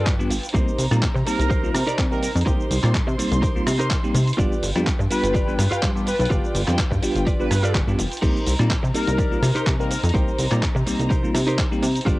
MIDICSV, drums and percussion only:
0, 0, Header, 1, 2, 480
1, 0, Start_track
1, 0, Key_signature, -3, "minor"
1, 0, Tempo, 480000
1, 546, Time_signature, 4, 2, 24, 8
1, 12193, End_track
2, 0, Start_track
2, 0, Title_t, "Drums"
2, 65, Note_on_c, 9, 36, 127
2, 65, Note_on_c, 9, 39, 119
2, 66, Note_on_c, 9, 42, 62
2, 72, Note_on_c, 9, 82, 44
2, 165, Note_off_c, 9, 36, 0
2, 165, Note_off_c, 9, 39, 0
2, 166, Note_off_c, 9, 42, 0
2, 172, Note_off_c, 9, 82, 0
2, 200, Note_on_c, 9, 82, 22
2, 300, Note_off_c, 9, 82, 0
2, 305, Note_on_c, 9, 46, 97
2, 312, Note_on_c, 9, 82, 78
2, 405, Note_off_c, 9, 46, 0
2, 412, Note_off_c, 9, 82, 0
2, 434, Note_on_c, 9, 42, 45
2, 440, Note_on_c, 9, 82, 33
2, 490, Note_off_c, 9, 42, 0
2, 490, Note_on_c, 9, 42, 60
2, 540, Note_off_c, 9, 82, 0
2, 545, Note_off_c, 9, 42, 0
2, 545, Note_on_c, 9, 42, 61
2, 546, Note_on_c, 9, 36, 122
2, 551, Note_on_c, 9, 82, 44
2, 645, Note_off_c, 9, 42, 0
2, 646, Note_off_c, 9, 36, 0
2, 651, Note_off_c, 9, 82, 0
2, 679, Note_on_c, 9, 82, 22
2, 779, Note_off_c, 9, 82, 0
2, 785, Note_on_c, 9, 46, 106
2, 791, Note_on_c, 9, 82, 77
2, 885, Note_off_c, 9, 46, 0
2, 891, Note_off_c, 9, 82, 0
2, 914, Note_on_c, 9, 37, 65
2, 914, Note_on_c, 9, 42, 52
2, 920, Note_on_c, 9, 82, 34
2, 1014, Note_off_c, 9, 37, 0
2, 1014, Note_off_c, 9, 42, 0
2, 1020, Note_off_c, 9, 82, 0
2, 1025, Note_on_c, 9, 36, 119
2, 1025, Note_on_c, 9, 39, 121
2, 1025, Note_on_c, 9, 42, 64
2, 1032, Note_on_c, 9, 82, 47
2, 1125, Note_off_c, 9, 36, 0
2, 1125, Note_off_c, 9, 39, 0
2, 1125, Note_off_c, 9, 42, 0
2, 1132, Note_off_c, 9, 82, 0
2, 1160, Note_on_c, 9, 82, 23
2, 1260, Note_off_c, 9, 82, 0
2, 1266, Note_on_c, 9, 46, 94
2, 1272, Note_on_c, 9, 82, 79
2, 1366, Note_off_c, 9, 46, 0
2, 1372, Note_off_c, 9, 82, 0
2, 1395, Note_on_c, 9, 42, 49
2, 1401, Note_on_c, 9, 82, 34
2, 1495, Note_off_c, 9, 42, 0
2, 1501, Note_off_c, 9, 82, 0
2, 1505, Note_on_c, 9, 36, 118
2, 1507, Note_on_c, 9, 42, 62
2, 1513, Note_on_c, 9, 82, 42
2, 1605, Note_off_c, 9, 36, 0
2, 1607, Note_off_c, 9, 42, 0
2, 1613, Note_off_c, 9, 82, 0
2, 1641, Note_on_c, 9, 82, 22
2, 1741, Note_off_c, 9, 82, 0
2, 1747, Note_on_c, 9, 37, 86
2, 1747, Note_on_c, 9, 46, 111
2, 1753, Note_on_c, 9, 82, 82
2, 1847, Note_off_c, 9, 37, 0
2, 1847, Note_off_c, 9, 46, 0
2, 1853, Note_off_c, 9, 82, 0
2, 1875, Note_on_c, 9, 42, 53
2, 1881, Note_on_c, 9, 82, 35
2, 1975, Note_off_c, 9, 42, 0
2, 1981, Note_off_c, 9, 82, 0
2, 1985, Note_on_c, 9, 36, 126
2, 1986, Note_on_c, 9, 39, 117
2, 1987, Note_on_c, 9, 42, 64
2, 1993, Note_on_c, 9, 82, 47
2, 2085, Note_off_c, 9, 36, 0
2, 2086, Note_off_c, 9, 39, 0
2, 2087, Note_off_c, 9, 42, 0
2, 2093, Note_off_c, 9, 82, 0
2, 2122, Note_on_c, 9, 82, 22
2, 2222, Note_off_c, 9, 82, 0
2, 2227, Note_on_c, 9, 46, 93
2, 2233, Note_on_c, 9, 82, 80
2, 2327, Note_off_c, 9, 46, 0
2, 2333, Note_off_c, 9, 82, 0
2, 2356, Note_on_c, 9, 42, 46
2, 2363, Note_on_c, 9, 82, 33
2, 2411, Note_off_c, 9, 42, 0
2, 2411, Note_on_c, 9, 42, 60
2, 2463, Note_off_c, 9, 82, 0
2, 2466, Note_off_c, 9, 42, 0
2, 2466, Note_on_c, 9, 36, 116
2, 2466, Note_on_c, 9, 42, 62
2, 2473, Note_on_c, 9, 82, 46
2, 2566, Note_off_c, 9, 36, 0
2, 2566, Note_off_c, 9, 42, 0
2, 2573, Note_off_c, 9, 82, 0
2, 2602, Note_on_c, 9, 82, 23
2, 2702, Note_off_c, 9, 82, 0
2, 2707, Note_on_c, 9, 46, 102
2, 2713, Note_on_c, 9, 82, 83
2, 2807, Note_off_c, 9, 46, 0
2, 2813, Note_off_c, 9, 82, 0
2, 2835, Note_on_c, 9, 39, 36
2, 2836, Note_on_c, 9, 37, 64
2, 2836, Note_on_c, 9, 42, 54
2, 2842, Note_on_c, 9, 82, 36
2, 2935, Note_off_c, 9, 39, 0
2, 2936, Note_off_c, 9, 37, 0
2, 2936, Note_off_c, 9, 42, 0
2, 2942, Note_off_c, 9, 82, 0
2, 2946, Note_on_c, 9, 36, 118
2, 2946, Note_on_c, 9, 39, 118
2, 2947, Note_on_c, 9, 42, 66
2, 2953, Note_on_c, 9, 82, 47
2, 3046, Note_off_c, 9, 36, 0
2, 3046, Note_off_c, 9, 39, 0
2, 3047, Note_off_c, 9, 42, 0
2, 3053, Note_off_c, 9, 82, 0
2, 3083, Note_on_c, 9, 82, 23
2, 3183, Note_off_c, 9, 82, 0
2, 3189, Note_on_c, 9, 46, 90
2, 3195, Note_on_c, 9, 82, 84
2, 3289, Note_off_c, 9, 46, 0
2, 3295, Note_off_c, 9, 82, 0
2, 3315, Note_on_c, 9, 42, 53
2, 3321, Note_on_c, 9, 82, 34
2, 3415, Note_off_c, 9, 42, 0
2, 3421, Note_off_c, 9, 82, 0
2, 3426, Note_on_c, 9, 36, 114
2, 3427, Note_on_c, 9, 42, 66
2, 3434, Note_on_c, 9, 82, 46
2, 3526, Note_off_c, 9, 36, 0
2, 3527, Note_off_c, 9, 42, 0
2, 3534, Note_off_c, 9, 82, 0
2, 3562, Note_on_c, 9, 82, 23
2, 3662, Note_off_c, 9, 82, 0
2, 3666, Note_on_c, 9, 37, 88
2, 3666, Note_on_c, 9, 46, 106
2, 3673, Note_on_c, 9, 82, 86
2, 3766, Note_off_c, 9, 37, 0
2, 3766, Note_off_c, 9, 46, 0
2, 3773, Note_off_c, 9, 82, 0
2, 3795, Note_on_c, 9, 42, 55
2, 3801, Note_on_c, 9, 82, 36
2, 3895, Note_off_c, 9, 42, 0
2, 3901, Note_off_c, 9, 82, 0
2, 3904, Note_on_c, 9, 39, 118
2, 3905, Note_on_c, 9, 42, 67
2, 3906, Note_on_c, 9, 36, 115
2, 3911, Note_on_c, 9, 82, 49
2, 4004, Note_off_c, 9, 39, 0
2, 4005, Note_off_c, 9, 42, 0
2, 4007, Note_off_c, 9, 36, 0
2, 4011, Note_off_c, 9, 82, 0
2, 4040, Note_on_c, 9, 82, 24
2, 4140, Note_off_c, 9, 82, 0
2, 4145, Note_on_c, 9, 46, 90
2, 4151, Note_on_c, 9, 82, 84
2, 4245, Note_off_c, 9, 46, 0
2, 4251, Note_off_c, 9, 82, 0
2, 4274, Note_on_c, 9, 42, 49
2, 4280, Note_on_c, 9, 82, 34
2, 4329, Note_off_c, 9, 42, 0
2, 4329, Note_on_c, 9, 42, 61
2, 4380, Note_off_c, 9, 82, 0
2, 4386, Note_on_c, 9, 36, 114
2, 4392, Note_on_c, 9, 82, 46
2, 4429, Note_off_c, 9, 42, 0
2, 4486, Note_off_c, 9, 36, 0
2, 4492, Note_off_c, 9, 82, 0
2, 4521, Note_on_c, 9, 82, 24
2, 4621, Note_off_c, 9, 82, 0
2, 4627, Note_on_c, 9, 46, 104
2, 4633, Note_on_c, 9, 82, 85
2, 4727, Note_off_c, 9, 46, 0
2, 4733, Note_off_c, 9, 82, 0
2, 4755, Note_on_c, 9, 37, 62
2, 4755, Note_on_c, 9, 42, 57
2, 4762, Note_on_c, 9, 82, 35
2, 4855, Note_off_c, 9, 37, 0
2, 4855, Note_off_c, 9, 42, 0
2, 4862, Note_off_c, 9, 82, 0
2, 4866, Note_on_c, 9, 36, 119
2, 4866, Note_on_c, 9, 39, 120
2, 4867, Note_on_c, 9, 42, 73
2, 4873, Note_on_c, 9, 82, 50
2, 4966, Note_off_c, 9, 36, 0
2, 4966, Note_off_c, 9, 39, 0
2, 4967, Note_off_c, 9, 42, 0
2, 4973, Note_off_c, 9, 82, 0
2, 5001, Note_on_c, 9, 82, 24
2, 5101, Note_off_c, 9, 82, 0
2, 5105, Note_on_c, 9, 46, 91
2, 5112, Note_on_c, 9, 82, 85
2, 5205, Note_off_c, 9, 46, 0
2, 5212, Note_off_c, 9, 82, 0
2, 5235, Note_on_c, 9, 42, 55
2, 5242, Note_on_c, 9, 82, 36
2, 5335, Note_off_c, 9, 42, 0
2, 5342, Note_off_c, 9, 82, 0
2, 5346, Note_on_c, 9, 36, 117
2, 5348, Note_on_c, 9, 42, 66
2, 5354, Note_on_c, 9, 82, 45
2, 5446, Note_off_c, 9, 36, 0
2, 5448, Note_off_c, 9, 42, 0
2, 5454, Note_off_c, 9, 82, 0
2, 5483, Note_on_c, 9, 82, 23
2, 5583, Note_off_c, 9, 82, 0
2, 5588, Note_on_c, 9, 37, 83
2, 5588, Note_on_c, 9, 46, 105
2, 5594, Note_on_c, 9, 82, 85
2, 5688, Note_off_c, 9, 37, 0
2, 5688, Note_off_c, 9, 46, 0
2, 5694, Note_off_c, 9, 82, 0
2, 5716, Note_on_c, 9, 42, 57
2, 5723, Note_on_c, 9, 82, 37
2, 5816, Note_off_c, 9, 42, 0
2, 5823, Note_off_c, 9, 82, 0
2, 5827, Note_on_c, 9, 36, 116
2, 5828, Note_on_c, 9, 39, 122
2, 5828, Note_on_c, 9, 42, 69
2, 5835, Note_on_c, 9, 82, 47
2, 5927, Note_off_c, 9, 36, 0
2, 5928, Note_off_c, 9, 39, 0
2, 5928, Note_off_c, 9, 42, 0
2, 5935, Note_off_c, 9, 82, 0
2, 5962, Note_on_c, 9, 82, 24
2, 6062, Note_off_c, 9, 82, 0
2, 6068, Note_on_c, 9, 46, 87
2, 6074, Note_on_c, 9, 82, 87
2, 6168, Note_off_c, 9, 46, 0
2, 6174, Note_off_c, 9, 82, 0
2, 6198, Note_on_c, 9, 42, 49
2, 6204, Note_on_c, 9, 82, 35
2, 6254, Note_off_c, 9, 42, 0
2, 6254, Note_on_c, 9, 42, 65
2, 6304, Note_off_c, 9, 82, 0
2, 6307, Note_on_c, 9, 36, 114
2, 6315, Note_on_c, 9, 82, 44
2, 6354, Note_off_c, 9, 42, 0
2, 6407, Note_off_c, 9, 36, 0
2, 6415, Note_off_c, 9, 82, 0
2, 6443, Note_on_c, 9, 82, 23
2, 6543, Note_off_c, 9, 82, 0
2, 6548, Note_on_c, 9, 46, 102
2, 6554, Note_on_c, 9, 82, 80
2, 6648, Note_off_c, 9, 46, 0
2, 6654, Note_off_c, 9, 82, 0
2, 6676, Note_on_c, 9, 37, 61
2, 6676, Note_on_c, 9, 39, 39
2, 6676, Note_on_c, 9, 42, 55
2, 6682, Note_on_c, 9, 82, 37
2, 6776, Note_off_c, 9, 37, 0
2, 6776, Note_off_c, 9, 39, 0
2, 6776, Note_off_c, 9, 42, 0
2, 6782, Note_off_c, 9, 82, 0
2, 6787, Note_on_c, 9, 36, 115
2, 6787, Note_on_c, 9, 39, 126
2, 6788, Note_on_c, 9, 42, 73
2, 6794, Note_on_c, 9, 82, 48
2, 6887, Note_off_c, 9, 36, 0
2, 6887, Note_off_c, 9, 39, 0
2, 6888, Note_off_c, 9, 42, 0
2, 6894, Note_off_c, 9, 82, 0
2, 6915, Note_on_c, 9, 36, 61
2, 6922, Note_on_c, 9, 82, 23
2, 7015, Note_off_c, 9, 36, 0
2, 7022, Note_off_c, 9, 82, 0
2, 7027, Note_on_c, 9, 46, 93
2, 7033, Note_on_c, 9, 82, 83
2, 7127, Note_off_c, 9, 46, 0
2, 7133, Note_off_c, 9, 82, 0
2, 7156, Note_on_c, 9, 42, 55
2, 7162, Note_on_c, 9, 82, 34
2, 7256, Note_off_c, 9, 42, 0
2, 7262, Note_off_c, 9, 82, 0
2, 7267, Note_on_c, 9, 36, 115
2, 7269, Note_on_c, 9, 42, 69
2, 7275, Note_on_c, 9, 82, 46
2, 7367, Note_off_c, 9, 36, 0
2, 7369, Note_off_c, 9, 42, 0
2, 7375, Note_off_c, 9, 82, 0
2, 7403, Note_on_c, 9, 82, 23
2, 7503, Note_off_c, 9, 82, 0
2, 7508, Note_on_c, 9, 37, 80
2, 7508, Note_on_c, 9, 46, 106
2, 7514, Note_on_c, 9, 82, 86
2, 7608, Note_off_c, 9, 37, 0
2, 7608, Note_off_c, 9, 46, 0
2, 7614, Note_off_c, 9, 82, 0
2, 7637, Note_on_c, 9, 42, 59
2, 7643, Note_on_c, 9, 82, 36
2, 7737, Note_off_c, 9, 42, 0
2, 7743, Note_off_c, 9, 82, 0
2, 7747, Note_on_c, 9, 36, 122
2, 7748, Note_on_c, 9, 39, 125
2, 7749, Note_on_c, 9, 42, 71
2, 7755, Note_on_c, 9, 82, 49
2, 7847, Note_off_c, 9, 36, 0
2, 7848, Note_off_c, 9, 39, 0
2, 7849, Note_off_c, 9, 42, 0
2, 7855, Note_off_c, 9, 82, 0
2, 7882, Note_on_c, 9, 82, 24
2, 7982, Note_off_c, 9, 82, 0
2, 7988, Note_on_c, 9, 46, 92
2, 7994, Note_on_c, 9, 82, 85
2, 8088, Note_off_c, 9, 46, 0
2, 8094, Note_off_c, 9, 82, 0
2, 8116, Note_on_c, 9, 42, 50
2, 8123, Note_on_c, 9, 82, 34
2, 8171, Note_off_c, 9, 42, 0
2, 8171, Note_on_c, 9, 42, 65
2, 8223, Note_off_c, 9, 82, 0
2, 8226, Note_on_c, 9, 36, 116
2, 8228, Note_off_c, 9, 42, 0
2, 8228, Note_on_c, 9, 42, 69
2, 8228, Note_on_c, 9, 49, 76
2, 8234, Note_on_c, 9, 82, 44
2, 8326, Note_off_c, 9, 36, 0
2, 8328, Note_off_c, 9, 42, 0
2, 8328, Note_off_c, 9, 49, 0
2, 8334, Note_off_c, 9, 82, 0
2, 8362, Note_on_c, 9, 82, 22
2, 8462, Note_off_c, 9, 82, 0
2, 8467, Note_on_c, 9, 46, 112
2, 8473, Note_on_c, 9, 82, 80
2, 8567, Note_off_c, 9, 46, 0
2, 8573, Note_off_c, 9, 82, 0
2, 8595, Note_on_c, 9, 37, 60
2, 8595, Note_on_c, 9, 42, 57
2, 8602, Note_on_c, 9, 82, 34
2, 8695, Note_off_c, 9, 37, 0
2, 8695, Note_off_c, 9, 42, 0
2, 8702, Note_off_c, 9, 82, 0
2, 8706, Note_on_c, 9, 36, 120
2, 8707, Note_on_c, 9, 39, 127
2, 8708, Note_on_c, 9, 42, 75
2, 8714, Note_on_c, 9, 82, 46
2, 8806, Note_off_c, 9, 36, 0
2, 8807, Note_off_c, 9, 39, 0
2, 8808, Note_off_c, 9, 42, 0
2, 8814, Note_off_c, 9, 82, 0
2, 8843, Note_on_c, 9, 82, 23
2, 8943, Note_off_c, 9, 82, 0
2, 8946, Note_on_c, 9, 46, 97
2, 8953, Note_on_c, 9, 82, 79
2, 9046, Note_off_c, 9, 46, 0
2, 9053, Note_off_c, 9, 82, 0
2, 9074, Note_on_c, 9, 42, 57
2, 9081, Note_on_c, 9, 82, 33
2, 9174, Note_off_c, 9, 42, 0
2, 9181, Note_off_c, 9, 82, 0
2, 9185, Note_on_c, 9, 36, 120
2, 9187, Note_on_c, 9, 42, 68
2, 9193, Note_on_c, 9, 82, 44
2, 9285, Note_off_c, 9, 36, 0
2, 9287, Note_off_c, 9, 42, 0
2, 9293, Note_off_c, 9, 82, 0
2, 9323, Note_on_c, 9, 82, 22
2, 9423, Note_off_c, 9, 82, 0
2, 9427, Note_on_c, 9, 37, 76
2, 9427, Note_on_c, 9, 46, 108
2, 9433, Note_on_c, 9, 82, 80
2, 9527, Note_off_c, 9, 37, 0
2, 9527, Note_off_c, 9, 46, 0
2, 9533, Note_off_c, 9, 82, 0
2, 9557, Note_on_c, 9, 42, 58
2, 9563, Note_on_c, 9, 82, 36
2, 9657, Note_off_c, 9, 42, 0
2, 9663, Note_off_c, 9, 82, 0
2, 9666, Note_on_c, 9, 36, 124
2, 9668, Note_on_c, 9, 39, 125
2, 9668, Note_on_c, 9, 42, 71
2, 9674, Note_on_c, 9, 82, 47
2, 9766, Note_off_c, 9, 36, 0
2, 9768, Note_off_c, 9, 39, 0
2, 9768, Note_off_c, 9, 42, 0
2, 9774, Note_off_c, 9, 82, 0
2, 9801, Note_on_c, 9, 82, 23
2, 9901, Note_off_c, 9, 82, 0
2, 9907, Note_on_c, 9, 46, 94
2, 9913, Note_on_c, 9, 82, 81
2, 10007, Note_off_c, 9, 46, 0
2, 10013, Note_off_c, 9, 82, 0
2, 10035, Note_on_c, 9, 42, 49
2, 10041, Note_on_c, 9, 82, 33
2, 10090, Note_off_c, 9, 42, 0
2, 10090, Note_on_c, 9, 42, 68
2, 10141, Note_off_c, 9, 82, 0
2, 10146, Note_on_c, 9, 36, 123
2, 10152, Note_on_c, 9, 82, 42
2, 10190, Note_off_c, 9, 42, 0
2, 10246, Note_off_c, 9, 36, 0
2, 10252, Note_off_c, 9, 82, 0
2, 10280, Note_on_c, 9, 82, 21
2, 10380, Note_off_c, 9, 82, 0
2, 10385, Note_on_c, 9, 46, 110
2, 10391, Note_on_c, 9, 82, 77
2, 10485, Note_off_c, 9, 46, 0
2, 10491, Note_off_c, 9, 82, 0
2, 10514, Note_on_c, 9, 39, 40
2, 10515, Note_on_c, 9, 37, 59
2, 10515, Note_on_c, 9, 42, 56
2, 10521, Note_on_c, 9, 82, 34
2, 10614, Note_off_c, 9, 39, 0
2, 10615, Note_off_c, 9, 37, 0
2, 10615, Note_off_c, 9, 42, 0
2, 10621, Note_off_c, 9, 82, 0
2, 10625, Note_on_c, 9, 36, 123
2, 10626, Note_on_c, 9, 39, 127
2, 10627, Note_on_c, 9, 42, 68
2, 10633, Note_on_c, 9, 82, 46
2, 10725, Note_off_c, 9, 36, 0
2, 10726, Note_off_c, 9, 39, 0
2, 10727, Note_off_c, 9, 42, 0
2, 10733, Note_off_c, 9, 82, 0
2, 10761, Note_on_c, 9, 82, 22
2, 10861, Note_off_c, 9, 82, 0
2, 10866, Note_on_c, 9, 46, 94
2, 10872, Note_on_c, 9, 82, 77
2, 10966, Note_off_c, 9, 46, 0
2, 10972, Note_off_c, 9, 82, 0
2, 10994, Note_on_c, 9, 42, 53
2, 11001, Note_on_c, 9, 82, 33
2, 11094, Note_off_c, 9, 42, 0
2, 11101, Note_off_c, 9, 82, 0
2, 11105, Note_on_c, 9, 36, 126
2, 11107, Note_on_c, 9, 42, 66
2, 11113, Note_on_c, 9, 82, 43
2, 11205, Note_off_c, 9, 36, 0
2, 11207, Note_off_c, 9, 42, 0
2, 11213, Note_off_c, 9, 82, 0
2, 11240, Note_on_c, 9, 82, 21
2, 11340, Note_off_c, 9, 82, 0
2, 11346, Note_on_c, 9, 37, 81
2, 11346, Note_on_c, 9, 46, 111
2, 11352, Note_on_c, 9, 82, 79
2, 11446, Note_off_c, 9, 37, 0
2, 11446, Note_off_c, 9, 46, 0
2, 11452, Note_off_c, 9, 82, 0
2, 11475, Note_on_c, 9, 42, 54
2, 11481, Note_on_c, 9, 82, 33
2, 11575, Note_off_c, 9, 42, 0
2, 11581, Note_off_c, 9, 82, 0
2, 11585, Note_on_c, 9, 36, 127
2, 11586, Note_on_c, 9, 39, 127
2, 11586, Note_on_c, 9, 42, 69
2, 11592, Note_on_c, 9, 82, 45
2, 11685, Note_off_c, 9, 36, 0
2, 11686, Note_off_c, 9, 39, 0
2, 11686, Note_off_c, 9, 42, 0
2, 11692, Note_off_c, 9, 82, 0
2, 11720, Note_on_c, 9, 82, 21
2, 11820, Note_off_c, 9, 82, 0
2, 11826, Note_on_c, 9, 46, 93
2, 11832, Note_on_c, 9, 82, 78
2, 11926, Note_off_c, 9, 46, 0
2, 11932, Note_off_c, 9, 82, 0
2, 11954, Note_on_c, 9, 42, 51
2, 11960, Note_on_c, 9, 82, 32
2, 12009, Note_off_c, 9, 42, 0
2, 12009, Note_on_c, 9, 42, 64
2, 12060, Note_off_c, 9, 82, 0
2, 12065, Note_on_c, 9, 36, 127
2, 12066, Note_off_c, 9, 42, 0
2, 12066, Note_on_c, 9, 42, 66
2, 12072, Note_on_c, 9, 82, 42
2, 12165, Note_off_c, 9, 36, 0
2, 12166, Note_off_c, 9, 42, 0
2, 12172, Note_off_c, 9, 82, 0
2, 12193, End_track
0, 0, End_of_file